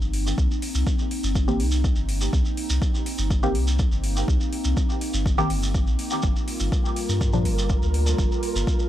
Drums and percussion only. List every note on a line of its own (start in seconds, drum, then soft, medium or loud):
0.02 shekere soft
0.14 open hi-hat medium
0.27 shekere medium
0.38 kick loud
0.38 shekere medium
0.51 shekere soft
0.62 open hi-hat medium
0.75 shekere medium
0.87 kick loud
0.87 shekere medium
0.99 shekere soft
1.11 open hi-hat medium
1.24 shekere medium
1.35 kick loud
1.35 shekere medium
1.48 shekere soft
1.60 open hi-hat medium
1.71 shekere medium
1.84 kick loud
1.84 shekere medium
1.96 shekere soft
2.09 open hi-hat medium
2.21 shekere medium
2.33 kick loud
2.33 shekere medium
2.45 shekere soft
2.57 open hi-hat medium
2.70 shekere medium
2.82 kick loud
2.82 shekere medium
2.95 shekere soft
3.06 open hi-hat medium
3.18 shekere medium
3.30 kick loud
3.30 shekere medium
3.43 shekere soft
3.55 open hi-hat medium
3.67 shekere medium
3.79 kick loud
3.79 shekere medium
3.92 shekere soft
4.04 open hi-hat medium
4.16 shekere medium
4.28 kick loud
4.28 shekere medium
4.40 shekere soft
4.52 open hi-hat medium
4.64 shekere medium
4.77 kick loud
4.77 shekere medium
4.89 shekere soft
5.01 open hi-hat medium
5.14 shekere medium
5.26 kick loud
5.26 shekere medium
5.38 shekere soft
5.50 open hi-hat medium
5.63 shekere medium
5.74 kick loud
5.74 shekere medium
5.87 shekere soft
5.99 open hi-hat medium
6.10 shekere medium
6.22 kick loud
6.22 shekere medium
6.36 shekere soft
6.48 open hi-hat medium
6.60 shekere medium
6.72 kick loud
6.72 shekere medium
6.85 shekere soft
6.96 open hi-hat medium
7.09 shekere medium
7.21 kick loud
7.21 shekere medium
7.33 shekere soft
7.45 open hi-hat medium
7.58 shekere medium
7.69 kick loud
7.69 shekere medium
7.83 shekere soft
7.94 open hi-hat medium
8.06 shekere medium
8.18 kick loud
8.18 shekere medium
8.32 shekere soft
8.43 open hi-hat medium
8.56 shekere medium
8.67 kick loud
8.67 shekere medium
8.79 shekere soft